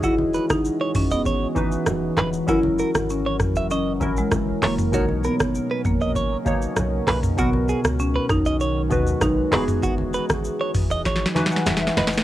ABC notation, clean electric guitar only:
X:1
M:4/4
L:1/16
Q:1/4=98
K:Elyd
V:1 name="Clean electric guitar"
F z B z2 c z d c2 z4 B z | F z A z2 c z e d2 z4 c z | F z A z2 B z d c2 z4 B z | F z G z2 B z d c2 z4 B z |
F z B z2 c z d c2 z4 B z |]